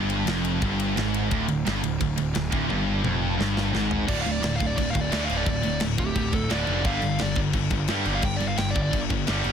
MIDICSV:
0, 0, Header, 1, 5, 480
1, 0, Start_track
1, 0, Key_signature, -1, "minor"
1, 0, Tempo, 346220
1, 1818, Time_signature, 4, 2, 24, 8
1, 13200, End_track
2, 0, Start_track
2, 0, Title_t, "Lead electric guitar"
2, 0, Program_c, 0, 29
2, 5664, Note_on_c, 0, 74, 91
2, 5815, Note_off_c, 0, 74, 0
2, 5845, Note_on_c, 0, 77, 85
2, 5980, Note_off_c, 0, 77, 0
2, 5980, Note_on_c, 0, 74, 75
2, 6124, Note_off_c, 0, 74, 0
2, 6141, Note_on_c, 0, 74, 89
2, 6294, Note_off_c, 0, 74, 0
2, 6322, Note_on_c, 0, 77, 89
2, 6465, Note_off_c, 0, 77, 0
2, 6465, Note_on_c, 0, 74, 84
2, 6609, Note_off_c, 0, 74, 0
2, 6626, Note_on_c, 0, 74, 87
2, 6777, Note_off_c, 0, 74, 0
2, 6808, Note_on_c, 0, 77, 90
2, 6943, Note_off_c, 0, 77, 0
2, 6943, Note_on_c, 0, 74, 89
2, 7095, Note_off_c, 0, 74, 0
2, 7112, Note_on_c, 0, 74, 90
2, 7260, Note_off_c, 0, 74, 0
2, 7282, Note_on_c, 0, 77, 88
2, 7425, Note_off_c, 0, 77, 0
2, 7447, Note_on_c, 0, 74, 87
2, 7588, Note_off_c, 0, 74, 0
2, 7614, Note_on_c, 0, 74, 97
2, 8062, Note_off_c, 0, 74, 0
2, 8309, Note_on_c, 0, 67, 101
2, 8770, Note_off_c, 0, 67, 0
2, 8798, Note_on_c, 0, 69, 85
2, 9021, Note_off_c, 0, 69, 0
2, 9022, Note_on_c, 0, 74, 91
2, 9486, Note_off_c, 0, 74, 0
2, 9511, Note_on_c, 0, 77, 93
2, 9971, Note_off_c, 0, 77, 0
2, 10010, Note_on_c, 0, 74, 100
2, 10228, Note_off_c, 0, 74, 0
2, 11295, Note_on_c, 0, 77, 90
2, 11434, Note_off_c, 0, 77, 0
2, 11438, Note_on_c, 0, 79, 97
2, 11585, Note_off_c, 0, 79, 0
2, 11595, Note_on_c, 0, 74, 92
2, 11743, Note_off_c, 0, 74, 0
2, 11756, Note_on_c, 0, 77, 86
2, 11891, Note_on_c, 0, 79, 85
2, 11904, Note_off_c, 0, 77, 0
2, 12051, Note_off_c, 0, 79, 0
2, 12070, Note_on_c, 0, 74, 91
2, 12215, Note_off_c, 0, 74, 0
2, 12232, Note_on_c, 0, 74, 113
2, 12460, Note_off_c, 0, 74, 0
2, 13200, End_track
3, 0, Start_track
3, 0, Title_t, "Distorted electric guitar"
3, 0, Program_c, 1, 30
3, 0, Note_on_c, 1, 43, 108
3, 368, Note_off_c, 1, 43, 0
3, 385, Note_on_c, 1, 41, 115
3, 854, Note_off_c, 1, 41, 0
3, 870, Note_on_c, 1, 43, 114
3, 1337, Note_off_c, 1, 43, 0
3, 1348, Note_on_c, 1, 44, 111
3, 1815, Note_off_c, 1, 44, 0
3, 1826, Note_on_c, 1, 38, 113
3, 2055, Note_off_c, 1, 38, 0
3, 2070, Note_on_c, 1, 38, 66
3, 2256, Note_off_c, 1, 38, 0
3, 2313, Note_on_c, 1, 43, 118
3, 2538, Note_off_c, 1, 43, 0
3, 2550, Note_on_c, 1, 38, 79
3, 2736, Note_off_c, 1, 38, 0
3, 2782, Note_on_c, 1, 38, 79
3, 2971, Note_off_c, 1, 38, 0
3, 3019, Note_on_c, 1, 38, 67
3, 3210, Note_off_c, 1, 38, 0
3, 3246, Note_on_c, 1, 38, 77
3, 3443, Note_off_c, 1, 38, 0
3, 3485, Note_on_c, 1, 38, 101
3, 3723, Note_off_c, 1, 38, 0
3, 3728, Note_on_c, 1, 43, 117
3, 4205, Note_off_c, 1, 43, 0
3, 4210, Note_on_c, 1, 41, 117
3, 4686, Note_off_c, 1, 41, 0
3, 4694, Note_on_c, 1, 43, 111
3, 5158, Note_off_c, 1, 43, 0
3, 5163, Note_on_c, 1, 44, 102
3, 5630, Note_off_c, 1, 44, 0
3, 5636, Note_on_c, 1, 38, 95
3, 5648, Note_on_c, 1, 45, 98
3, 5653, Note_on_c, 1, 50, 94
3, 5872, Note_off_c, 1, 38, 0
3, 5878, Note_off_c, 1, 45, 0
3, 5880, Note_off_c, 1, 50, 0
3, 5893, Note_on_c, 1, 38, 62
3, 5900, Note_on_c, 1, 45, 74
3, 6088, Note_off_c, 1, 38, 0
3, 6100, Note_off_c, 1, 45, 0
3, 6105, Note_on_c, 1, 38, 76
3, 6117, Note_on_c, 1, 45, 93
3, 6337, Note_off_c, 1, 38, 0
3, 6343, Note_off_c, 1, 45, 0
3, 6350, Note_on_c, 1, 38, 80
3, 6364, Note_on_c, 1, 45, 80
3, 6580, Note_off_c, 1, 38, 0
3, 6586, Note_off_c, 1, 45, 0
3, 6600, Note_on_c, 1, 38, 81
3, 6609, Note_on_c, 1, 45, 92
3, 6824, Note_off_c, 1, 38, 0
3, 6824, Note_off_c, 1, 45, 0
3, 6838, Note_on_c, 1, 38, 72
3, 6841, Note_on_c, 1, 45, 84
3, 7064, Note_off_c, 1, 38, 0
3, 7065, Note_off_c, 1, 45, 0
3, 7082, Note_on_c, 1, 38, 91
3, 7090, Note_on_c, 1, 45, 97
3, 7101, Note_on_c, 1, 50, 113
3, 7293, Note_off_c, 1, 38, 0
3, 7304, Note_off_c, 1, 45, 0
3, 7309, Note_on_c, 1, 38, 84
3, 7311, Note_off_c, 1, 50, 0
3, 7321, Note_on_c, 1, 45, 83
3, 7328, Note_on_c, 1, 50, 94
3, 7533, Note_off_c, 1, 38, 0
3, 7540, Note_off_c, 1, 45, 0
3, 7550, Note_on_c, 1, 38, 85
3, 7557, Note_on_c, 1, 45, 75
3, 7558, Note_off_c, 1, 50, 0
3, 7780, Note_off_c, 1, 38, 0
3, 7783, Note_off_c, 1, 45, 0
3, 7794, Note_on_c, 1, 38, 66
3, 7801, Note_on_c, 1, 45, 80
3, 8022, Note_off_c, 1, 38, 0
3, 8025, Note_off_c, 1, 45, 0
3, 8056, Note_on_c, 1, 38, 82
3, 8057, Note_on_c, 1, 45, 91
3, 8273, Note_off_c, 1, 38, 0
3, 8273, Note_off_c, 1, 45, 0
3, 8300, Note_on_c, 1, 38, 78
3, 8304, Note_on_c, 1, 45, 79
3, 8515, Note_off_c, 1, 38, 0
3, 8517, Note_off_c, 1, 45, 0
3, 8541, Note_on_c, 1, 38, 79
3, 8552, Note_on_c, 1, 45, 86
3, 8749, Note_off_c, 1, 38, 0
3, 8750, Note_off_c, 1, 45, 0
3, 8766, Note_on_c, 1, 38, 67
3, 8767, Note_on_c, 1, 45, 79
3, 8988, Note_off_c, 1, 38, 0
3, 8989, Note_off_c, 1, 45, 0
3, 9003, Note_on_c, 1, 38, 90
3, 9016, Note_on_c, 1, 45, 100
3, 9021, Note_on_c, 1, 50, 106
3, 9237, Note_off_c, 1, 38, 0
3, 9243, Note_off_c, 1, 45, 0
3, 9246, Note_off_c, 1, 50, 0
3, 9262, Note_on_c, 1, 38, 92
3, 9273, Note_on_c, 1, 45, 97
3, 9280, Note_on_c, 1, 50, 106
3, 9486, Note_off_c, 1, 38, 0
3, 9490, Note_off_c, 1, 50, 0
3, 9492, Note_off_c, 1, 45, 0
3, 9493, Note_on_c, 1, 43, 94
3, 9506, Note_on_c, 1, 50, 92
3, 9515, Note_on_c, 1, 55, 102
3, 9722, Note_off_c, 1, 43, 0
3, 9725, Note_off_c, 1, 50, 0
3, 9733, Note_off_c, 1, 55, 0
3, 9738, Note_on_c, 1, 43, 68
3, 9742, Note_on_c, 1, 50, 76
3, 9955, Note_off_c, 1, 43, 0
3, 9957, Note_off_c, 1, 50, 0
3, 9982, Note_on_c, 1, 43, 86
3, 9988, Note_on_c, 1, 50, 96
3, 10197, Note_off_c, 1, 43, 0
3, 10200, Note_off_c, 1, 50, 0
3, 10214, Note_on_c, 1, 43, 74
3, 10224, Note_on_c, 1, 50, 84
3, 10432, Note_off_c, 1, 50, 0
3, 10433, Note_off_c, 1, 43, 0
3, 10449, Note_on_c, 1, 50, 85
3, 10450, Note_on_c, 1, 43, 77
3, 10668, Note_off_c, 1, 43, 0
3, 10671, Note_off_c, 1, 50, 0
3, 10685, Note_on_c, 1, 43, 68
3, 10693, Note_on_c, 1, 50, 78
3, 10909, Note_off_c, 1, 43, 0
3, 10913, Note_off_c, 1, 50, 0
3, 10934, Note_on_c, 1, 43, 90
3, 10941, Note_on_c, 1, 50, 96
3, 10952, Note_on_c, 1, 55, 103
3, 11140, Note_off_c, 1, 43, 0
3, 11150, Note_off_c, 1, 50, 0
3, 11154, Note_off_c, 1, 55, 0
3, 11157, Note_on_c, 1, 43, 93
3, 11167, Note_on_c, 1, 50, 99
3, 11171, Note_on_c, 1, 55, 101
3, 11384, Note_off_c, 1, 43, 0
3, 11391, Note_off_c, 1, 50, 0
3, 11400, Note_on_c, 1, 43, 75
3, 11401, Note_off_c, 1, 55, 0
3, 11408, Note_on_c, 1, 50, 87
3, 11614, Note_off_c, 1, 43, 0
3, 11630, Note_off_c, 1, 50, 0
3, 11630, Note_on_c, 1, 43, 72
3, 11644, Note_on_c, 1, 50, 76
3, 11858, Note_off_c, 1, 43, 0
3, 11869, Note_off_c, 1, 50, 0
3, 11875, Note_on_c, 1, 43, 92
3, 11884, Note_on_c, 1, 50, 94
3, 12104, Note_off_c, 1, 43, 0
3, 12108, Note_off_c, 1, 50, 0
3, 12127, Note_on_c, 1, 43, 80
3, 12133, Note_on_c, 1, 50, 84
3, 12335, Note_off_c, 1, 43, 0
3, 12345, Note_off_c, 1, 50, 0
3, 12352, Note_on_c, 1, 43, 81
3, 12362, Note_on_c, 1, 50, 82
3, 12583, Note_off_c, 1, 43, 0
3, 12588, Note_off_c, 1, 50, 0
3, 12610, Note_on_c, 1, 43, 73
3, 12615, Note_on_c, 1, 50, 77
3, 12832, Note_off_c, 1, 43, 0
3, 12834, Note_off_c, 1, 50, 0
3, 12851, Note_on_c, 1, 43, 85
3, 12856, Note_on_c, 1, 50, 99
3, 12863, Note_on_c, 1, 55, 110
3, 13060, Note_off_c, 1, 43, 0
3, 13069, Note_off_c, 1, 50, 0
3, 13077, Note_on_c, 1, 43, 90
3, 13085, Note_on_c, 1, 50, 93
3, 13088, Note_off_c, 1, 55, 0
3, 13102, Note_on_c, 1, 55, 99
3, 13200, Note_off_c, 1, 43, 0
3, 13200, Note_off_c, 1, 50, 0
3, 13200, Note_off_c, 1, 55, 0
3, 13200, End_track
4, 0, Start_track
4, 0, Title_t, "Picked electric bass"
4, 0, Program_c, 2, 34
4, 0, Note_on_c, 2, 31, 96
4, 346, Note_off_c, 2, 31, 0
4, 371, Note_on_c, 2, 29, 88
4, 821, Note_off_c, 2, 29, 0
4, 867, Note_on_c, 2, 31, 96
4, 1309, Note_off_c, 2, 31, 0
4, 1346, Note_on_c, 2, 32, 100
4, 1789, Note_off_c, 2, 32, 0
4, 1832, Note_on_c, 2, 26, 100
4, 2048, Note_off_c, 2, 26, 0
4, 2081, Note_on_c, 2, 26, 84
4, 2293, Note_off_c, 2, 26, 0
4, 2310, Note_on_c, 2, 31, 97
4, 2527, Note_off_c, 2, 31, 0
4, 2549, Note_on_c, 2, 26, 75
4, 2767, Note_off_c, 2, 26, 0
4, 2783, Note_on_c, 2, 26, 84
4, 3003, Note_off_c, 2, 26, 0
4, 3036, Note_on_c, 2, 26, 77
4, 3250, Note_off_c, 2, 26, 0
4, 3263, Note_on_c, 2, 26, 86
4, 3483, Note_off_c, 2, 26, 0
4, 3503, Note_on_c, 2, 26, 94
4, 3723, Note_off_c, 2, 26, 0
4, 3761, Note_on_c, 2, 31, 97
4, 4196, Note_off_c, 2, 31, 0
4, 4238, Note_on_c, 2, 29, 89
4, 4674, Note_off_c, 2, 29, 0
4, 4716, Note_on_c, 2, 31, 98
4, 5153, Note_off_c, 2, 31, 0
4, 5200, Note_on_c, 2, 32, 97
4, 5635, Note_off_c, 2, 32, 0
4, 5665, Note_on_c, 2, 26, 89
4, 5867, Note_off_c, 2, 26, 0
4, 5906, Note_on_c, 2, 26, 83
4, 6108, Note_off_c, 2, 26, 0
4, 6146, Note_on_c, 2, 26, 90
4, 6348, Note_off_c, 2, 26, 0
4, 6386, Note_on_c, 2, 26, 84
4, 6588, Note_off_c, 2, 26, 0
4, 6626, Note_on_c, 2, 26, 90
4, 6828, Note_off_c, 2, 26, 0
4, 6860, Note_on_c, 2, 26, 93
4, 7065, Note_off_c, 2, 26, 0
4, 7100, Note_on_c, 2, 38, 99
4, 7304, Note_off_c, 2, 38, 0
4, 7343, Note_on_c, 2, 26, 89
4, 7547, Note_off_c, 2, 26, 0
4, 7579, Note_on_c, 2, 26, 89
4, 7784, Note_off_c, 2, 26, 0
4, 7833, Note_on_c, 2, 26, 84
4, 8032, Note_off_c, 2, 26, 0
4, 8068, Note_on_c, 2, 26, 93
4, 8269, Note_off_c, 2, 26, 0
4, 8299, Note_on_c, 2, 26, 82
4, 8504, Note_off_c, 2, 26, 0
4, 8540, Note_on_c, 2, 26, 95
4, 8951, Note_off_c, 2, 26, 0
4, 9014, Note_on_c, 2, 26, 97
4, 9222, Note_off_c, 2, 26, 0
4, 9254, Note_on_c, 2, 29, 94
4, 9462, Note_off_c, 2, 29, 0
4, 9498, Note_on_c, 2, 31, 97
4, 9704, Note_off_c, 2, 31, 0
4, 9735, Note_on_c, 2, 31, 88
4, 9943, Note_off_c, 2, 31, 0
4, 9983, Note_on_c, 2, 31, 87
4, 10187, Note_off_c, 2, 31, 0
4, 10210, Note_on_c, 2, 31, 83
4, 10420, Note_off_c, 2, 31, 0
4, 10450, Note_on_c, 2, 31, 93
4, 10660, Note_off_c, 2, 31, 0
4, 10692, Note_on_c, 2, 31, 88
4, 10902, Note_off_c, 2, 31, 0
4, 10947, Note_on_c, 2, 43, 91
4, 11150, Note_off_c, 2, 43, 0
4, 11175, Note_on_c, 2, 31, 90
4, 11383, Note_off_c, 2, 31, 0
4, 11413, Note_on_c, 2, 31, 91
4, 11622, Note_off_c, 2, 31, 0
4, 11651, Note_on_c, 2, 31, 91
4, 11861, Note_off_c, 2, 31, 0
4, 11890, Note_on_c, 2, 31, 91
4, 12100, Note_off_c, 2, 31, 0
4, 12143, Note_on_c, 2, 31, 86
4, 12348, Note_off_c, 2, 31, 0
4, 12389, Note_on_c, 2, 31, 90
4, 12797, Note_off_c, 2, 31, 0
4, 12865, Note_on_c, 2, 31, 93
4, 13069, Note_off_c, 2, 31, 0
4, 13099, Note_on_c, 2, 31, 88
4, 13200, Note_off_c, 2, 31, 0
4, 13200, End_track
5, 0, Start_track
5, 0, Title_t, "Drums"
5, 134, Note_on_c, 9, 51, 72
5, 273, Note_off_c, 9, 51, 0
5, 374, Note_on_c, 9, 51, 109
5, 388, Note_on_c, 9, 38, 107
5, 512, Note_off_c, 9, 51, 0
5, 526, Note_off_c, 9, 38, 0
5, 618, Note_on_c, 9, 51, 73
5, 757, Note_off_c, 9, 51, 0
5, 856, Note_on_c, 9, 51, 90
5, 860, Note_on_c, 9, 36, 102
5, 995, Note_off_c, 9, 51, 0
5, 999, Note_off_c, 9, 36, 0
5, 1104, Note_on_c, 9, 51, 83
5, 1242, Note_off_c, 9, 51, 0
5, 1347, Note_on_c, 9, 51, 86
5, 1360, Note_on_c, 9, 38, 105
5, 1485, Note_off_c, 9, 51, 0
5, 1499, Note_off_c, 9, 38, 0
5, 1585, Note_on_c, 9, 51, 72
5, 1723, Note_off_c, 9, 51, 0
5, 1818, Note_on_c, 9, 51, 104
5, 1823, Note_on_c, 9, 36, 101
5, 1957, Note_off_c, 9, 51, 0
5, 1962, Note_off_c, 9, 36, 0
5, 2058, Note_on_c, 9, 51, 74
5, 2196, Note_off_c, 9, 51, 0
5, 2309, Note_on_c, 9, 51, 99
5, 2323, Note_on_c, 9, 38, 109
5, 2447, Note_off_c, 9, 51, 0
5, 2461, Note_off_c, 9, 38, 0
5, 2545, Note_on_c, 9, 51, 77
5, 2684, Note_off_c, 9, 51, 0
5, 2781, Note_on_c, 9, 51, 99
5, 2783, Note_on_c, 9, 36, 92
5, 2919, Note_off_c, 9, 51, 0
5, 2922, Note_off_c, 9, 36, 0
5, 3017, Note_on_c, 9, 51, 86
5, 3156, Note_off_c, 9, 51, 0
5, 3255, Note_on_c, 9, 51, 102
5, 3269, Note_on_c, 9, 38, 115
5, 3394, Note_off_c, 9, 51, 0
5, 3408, Note_off_c, 9, 38, 0
5, 3495, Note_on_c, 9, 51, 81
5, 3501, Note_on_c, 9, 36, 106
5, 3634, Note_off_c, 9, 51, 0
5, 3640, Note_off_c, 9, 36, 0
5, 3746, Note_on_c, 9, 48, 62
5, 3884, Note_off_c, 9, 48, 0
5, 4222, Note_on_c, 9, 47, 82
5, 4360, Note_off_c, 9, 47, 0
5, 4722, Note_on_c, 9, 38, 92
5, 4861, Note_off_c, 9, 38, 0
5, 4953, Note_on_c, 9, 38, 90
5, 5092, Note_off_c, 9, 38, 0
5, 5196, Note_on_c, 9, 38, 102
5, 5335, Note_off_c, 9, 38, 0
5, 5421, Note_on_c, 9, 43, 92
5, 5560, Note_off_c, 9, 43, 0
5, 5662, Note_on_c, 9, 49, 117
5, 5662, Note_on_c, 9, 57, 75
5, 5663, Note_on_c, 9, 36, 109
5, 5801, Note_off_c, 9, 49, 0
5, 5801, Note_off_c, 9, 57, 0
5, 5802, Note_off_c, 9, 36, 0
5, 5904, Note_on_c, 9, 57, 57
5, 6043, Note_off_c, 9, 57, 0
5, 6143, Note_on_c, 9, 57, 82
5, 6156, Note_on_c, 9, 38, 113
5, 6281, Note_off_c, 9, 57, 0
5, 6295, Note_off_c, 9, 38, 0
5, 6382, Note_on_c, 9, 57, 63
5, 6383, Note_on_c, 9, 36, 82
5, 6521, Note_off_c, 9, 57, 0
5, 6522, Note_off_c, 9, 36, 0
5, 6625, Note_on_c, 9, 36, 85
5, 6630, Note_on_c, 9, 57, 83
5, 6764, Note_off_c, 9, 36, 0
5, 6769, Note_off_c, 9, 57, 0
5, 6863, Note_on_c, 9, 36, 98
5, 6863, Note_on_c, 9, 57, 71
5, 7001, Note_off_c, 9, 36, 0
5, 7002, Note_off_c, 9, 57, 0
5, 7099, Note_on_c, 9, 57, 84
5, 7113, Note_on_c, 9, 38, 101
5, 7237, Note_off_c, 9, 57, 0
5, 7251, Note_off_c, 9, 38, 0
5, 7339, Note_on_c, 9, 57, 62
5, 7478, Note_off_c, 9, 57, 0
5, 7573, Note_on_c, 9, 57, 76
5, 7576, Note_on_c, 9, 36, 110
5, 7711, Note_off_c, 9, 57, 0
5, 7714, Note_off_c, 9, 36, 0
5, 7808, Note_on_c, 9, 57, 57
5, 7946, Note_off_c, 9, 57, 0
5, 8040, Note_on_c, 9, 57, 87
5, 8054, Note_on_c, 9, 38, 119
5, 8179, Note_off_c, 9, 57, 0
5, 8192, Note_off_c, 9, 38, 0
5, 8290, Note_on_c, 9, 57, 60
5, 8296, Note_on_c, 9, 36, 88
5, 8429, Note_off_c, 9, 57, 0
5, 8434, Note_off_c, 9, 36, 0
5, 8536, Note_on_c, 9, 36, 89
5, 8536, Note_on_c, 9, 57, 79
5, 8674, Note_off_c, 9, 57, 0
5, 8675, Note_off_c, 9, 36, 0
5, 8771, Note_on_c, 9, 57, 65
5, 8776, Note_on_c, 9, 36, 94
5, 8910, Note_off_c, 9, 57, 0
5, 8915, Note_off_c, 9, 36, 0
5, 9011, Note_on_c, 9, 57, 71
5, 9025, Note_on_c, 9, 38, 115
5, 9150, Note_off_c, 9, 57, 0
5, 9164, Note_off_c, 9, 38, 0
5, 9246, Note_on_c, 9, 57, 53
5, 9385, Note_off_c, 9, 57, 0
5, 9490, Note_on_c, 9, 57, 77
5, 9495, Note_on_c, 9, 36, 110
5, 9628, Note_off_c, 9, 57, 0
5, 9634, Note_off_c, 9, 36, 0
5, 9730, Note_on_c, 9, 57, 58
5, 9868, Note_off_c, 9, 57, 0
5, 9964, Note_on_c, 9, 57, 80
5, 9977, Note_on_c, 9, 38, 104
5, 10102, Note_off_c, 9, 57, 0
5, 10116, Note_off_c, 9, 38, 0
5, 10195, Note_on_c, 9, 57, 61
5, 10208, Note_on_c, 9, 36, 84
5, 10334, Note_off_c, 9, 57, 0
5, 10346, Note_off_c, 9, 36, 0
5, 10442, Note_on_c, 9, 57, 81
5, 10448, Note_on_c, 9, 36, 84
5, 10581, Note_off_c, 9, 57, 0
5, 10586, Note_off_c, 9, 36, 0
5, 10680, Note_on_c, 9, 57, 71
5, 10688, Note_on_c, 9, 36, 93
5, 10818, Note_off_c, 9, 57, 0
5, 10827, Note_off_c, 9, 36, 0
5, 10919, Note_on_c, 9, 57, 82
5, 10933, Note_on_c, 9, 38, 103
5, 11058, Note_off_c, 9, 57, 0
5, 11072, Note_off_c, 9, 38, 0
5, 11166, Note_on_c, 9, 57, 58
5, 11304, Note_off_c, 9, 57, 0
5, 11400, Note_on_c, 9, 57, 90
5, 11411, Note_on_c, 9, 36, 110
5, 11538, Note_off_c, 9, 57, 0
5, 11550, Note_off_c, 9, 36, 0
5, 11650, Note_on_c, 9, 57, 56
5, 11788, Note_off_c, 9, 57, 0
5, 11888, Note_on_c, 9, 57, 82
5, 11902, Note_on_c, 9, 38, 112
5, 12027, Note_off_c, 9, 57, 0
5, 12041, Note_off_c, 9, 38, 0
5, 12139, Note_on_c, 9, 57, 61
5, 12141, Note_on_c, 9, 36, 82
5, 12277, Note_off_c, 9, 57, 0
5, 12279, Note_off_c, 9, 36, 0
5, 12383, Note_on_c, 9, 36, 85
5, 12386, Note_on_c, 9, 57, 75
5, 12522, Note_off_c, 9, 36, 0
5, 12525, Note_off_c, 9, 57, 0
5, 12615, Note_on_c, 9, 57, 67
5, 12621, Note_on_c, 9, 36, 90
5, 12754, Note_off_c, 9, 57, 0
5, 12760, Note_off_c, 9, 36, 0
5, 12853, Note_on_c, 9, 57, 82
5, 12867, Note_on_c, 9, 38, 107
5, 12991, Note_off_c, 9, 57, 0
5, 13005, Note_off_c, 9, 38, 0
5, 13090, Note_on_c, 9, 57, 58
5, 13200, Note_off_c, 9, 57, 0
5, 13200, End_track
0, 0, End_of_file